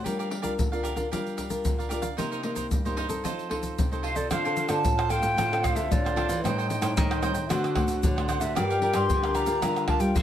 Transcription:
0.04 G3 D4 F4 G4 A#4 D5 F5, pandeiro, shaker, surdo
0.19 G4 A#4 D5 F5, pandeiro, shaker
0.30 G4 A#4 D5 F5, pandeiro
0.42 D4 F4 G4 A#4 D5 F5, pandeiro, shaker, surdo
0.58 D3, pandeiro, shaker, surdo
0.72 D4 F4 A#4 D5 F5, pandeiro, shaker
0.83 G4 A#4 D5 F5, pandeiro, shaker
0.96 D4 F4 A#4 D5 F5, pandeiro, shaker, surdo
1.11 G3 D4 F4 G4 A#4 D5 F5, pandeiro, shaker, surdo
1.27 pandeiro, shaker
1.37 G4 A#4 D5 F5, pandeiro, shaker, surdo
1.49 D4 F4 A#4, pandeiro, shaker, surdo
1.65 D3, pandeiro, shaker, surdo
1.78 A#4 D5 F5, pandeiro, shaker
1.89 D4 F4 G4 A#4 D5 F5, pandeiro, shaker
2.02 A#4 D5 F5, pandeiro, shaker, surdo
2.17 C3 A#3 D#4 G4 A#4 C5 D#5, pandeiro, shaker, surdo
2.31 D#4 A#4 C5 D#5, pandeiro, shaker
2.43 A#3 D#4 G4 A#4 C5 D#5, pandeiro
2.55 D#4 A#4 C5 D#5, pandeiro, shaker, surdo
2.71 G2, pandeiro, shaker, surdo
2.85 A#3 D#4 G4 A#4 C5 D#5, pandeiro, shaker
2.97 D#4 A#4 C5 D#5, pandeiro
3.08 C4 D#4 A4 A#4 C5 D#5, pandeiro, shaker, surdo
3.24 F3 F4 A4 C5 D#5, pandeiro, shaker, surdo
3.39 pandeiro, shaker
3.49 C4 D#4 F4 A4 C5 D#5, pandeiro, surdo
3.63 pandeiro, shaker, surdo
3.78 C3, pandeiro, shaker, surdo
3.92 C4 D#4 A4 C5 D#5, pandeiro, shaker
4.03 F4 A4 C5 D#5 F5, pandeiro
4.15 C4 F4 A4 C5 D5 D#5, pandeiro, shaker, surdo
4.31 D3 D4 F4 A4 C5 F5, pandeiro, tamborim, shaker, surdo
4.45 C4 D4 F4 A4 C5 F5, pandeiro, shaker
4.56 D4 A4 C5 F5, pandeiro, shaker
4.68 D3 C4 D4 F4 A4 C5 F5 A5, pandeiro, tamborim, shaker
4.84 A2, pandeiro, shaker, surdo
4.98 A4 C5 F5, pandeiro, tamborim, shaker
5.09 C4 D4 F4 A4 C5 F5 G5, pandeiro, tamborim, shaker
5.22 A2 A4 C5 F5, pandeiro, shaker
5.37 A2 D3 D4 A4 C5 F5, pandeiro, tamborim, shaker, surdo
5.52 C4 F4 A4, pandeiro, tamborim, shaker
5.63 D4 A4 C5 F5, pandeiro, tamborim, shaker, surdo
5.75 D3 C4 F4 A4 E5, pandeiro, shaker
5.91 A2 D3 D5, pandeiro, shaker, surdo
6.05 A4 C5 F5, pandeiro, tamborim, shaker
6.16 C4 D4 F4 A4 C5 F5, pandeiro, tamborim
6.28 E3 A4 C5 F5, pandeiro, shaker
6.44 A2 G3 C4 D#4 A4 C5 D#5 G5, pandeiro, tamborim, shaker, surdo
6.58 A4 C5 D#5 G5, pandeiro, shaker
6.70 A4 C5 D#5 G5, pandeiro, shaker
6.81 A2 G3 C4 D#4 A4 C5 D#5 G5, pandeiro, tamborim, shaker
6.97 A2 D#3 D#4, pandeiro, shaker, surdo
7.11 C5 D#5 G5, pandeiro, tamborim, shaker
7.22 G3 C4 D#4 A4 C5 D#5 G5, pandeiro, tamborim, shaker
7.34 D#3 C5 D#5 G5, pandeiro, shaker
7.49 D3 A3 C4 D4 F#4 C5 D5 F#5, pandeiro, tamborim, shaker, surdo
7.64 pandeiro, tamborim, shaker
7.75 A3 C4 D4 F#4 C5 D5 F#5, pandeiro, tamborim, surdo
7.88 D3, pandeiro, shaker
8.03 A2 D3, pandeiro, shaker, surdo
8.16 A3 C4 F#4 C5 D5 F#5, pandeiro, tamborim, shaker
8.28 D4 C5 D5 F#5, pandeiro, tamborim, shaker
8.40 D3 C5 D5 E5 F#5, pandeiro, shaker
8.55 G2 G3 D4 F4 G4 A#4 D5 F5 G5, pandeiro, tamborim, shaker, surdo
8.70 G4 A#4 D5 F5, pandeiro, shaker
8.81 D4 F4 G4 A#4 D5 F5, pandeiro
8.94 G2 G4 A#4 D5 F5 C6, pandeiro, tamborim, shaker
9.09 D3, pandeiro, shaker, surdo
9.23 D4 F4 A#4 D5 F5, pandeiro, tamborim, shaker
9.34 G4 A#4 D5 F5 A#5, pandeiro, tamborim, shaker
9.46 D3 D4 F4 A#4 D5 F5, pandeiro, shaker
9.62 D3 G3 D4 F4 G4 A#4 D5 F5, pandeiro, tamborim, shaker, surdo
9.76 pandeiro, tamborim, shaker
9.87 D4 F4 G4 A#4 D5 F5 A5, pandeiro, tamborim, surdo
10.00 G3 G5, pandeiro, shaker
10.15 G2 D3 F5, pandeiro, shaker, surdo

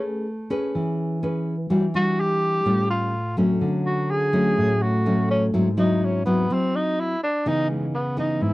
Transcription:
Already playing: A3 C#4 G#4 B4
0.50 C#4 G#4 B4
0.75 E3
1.23 C#4 G#4 B4
1.70 E3 G3 D4 F#4
1.94 G3 D4 F#4
2.20 G4
2.65 A2 G3 C#4 F4
2.90 F4
3.37 F#3 A3 C4 C#4
3.61 D3
3.86 F#4
4.11 G#4
4.33 F#3 A3 C#4
4.58 A2
4.83 F#4
5.06 F#3 A3 C#4
5.31 C#4
5.54 G#2 F#3 C4 E4
5.77 F#3 C4 D#4 E4
6.05 C#4
6.26 F#3 B3 C4 E4
6.50 F#3 C4 E4
6.76 D#4
7.00 E4
7.23 D4
7.46 C#3 E3 B3 D#4
7.70 G#3
7.95 B3
8.17 E3 B3 D#4
8.41 G#2 E4

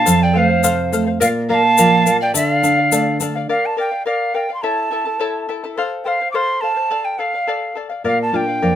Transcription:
Already playing: F5 A5
0.05 F2 A4 C5 F5, shaker
0.23 D5 G5
0.33 A3 A4 C5 F5
0.38 F5
0.48 C5 F5
0.63 C3 A4 C5 F5, shaker
0.92 A3 A4 C5 F5, shaker
1.06 C5 F5
1.20 A#2 A#4 D5 F5, shaker
1.49 A#3 A#4 D5 F5 A#5
1.54 A5
1.63 D5 F5
1.78 F3 A#4 D5 F5, shaker
2.06 A#3 A#4 D5 F5, shaker
2.20 D5 F5 G5
2.34 D3 A4 D5 E5 F5, shaker
2.49 F5
2.63 D4 A4 D5 F5, shaker
2.77 D5 F5
2.92 A3 A4 D5 F5, shaker
3.20 D4 A4 D5 F5, shaker
3.35 D5 F5
3.49 A#4 D5 F5
3.66 A5
3.77 A#4 D5 F5 G5
3.91 D5 F5
4.06 A#4 D5 F5
4.34 A#4 D5 F5 G5
4.49 D5 F5
4.54 C6
4.63 E4 A4 C#5 E5 A5
4.91 E4 A4 E5 A5
5.05 E4 A4 A5
5.19 E4 A4 C#5 E5 A5
5.49 E4 A4 E5 A5
5.64 E4 A4 A5
5.77 A4 C5 F5
6.04 A4 C5 F5 G5
6.21 C5 F5
6.32 A4 C5 F5 C6 D6
6.61 A4 C5 F5 A5
6.75 C5 F5
6.90 A4 D5 F5
7.05 G5
7.19 A4 D5 F5
7.34 D5 F5
7.47 A4 D5 F5
7.75 A4 D5 F5
7.89 D5 F5
8.04 A#2 A#4 D5 F5
8.22 A5
8.32 A#3 D4 F4 A#4 D5 F5 G5
8.47 D5 F5
8.62 F2 A#4 D5 F5

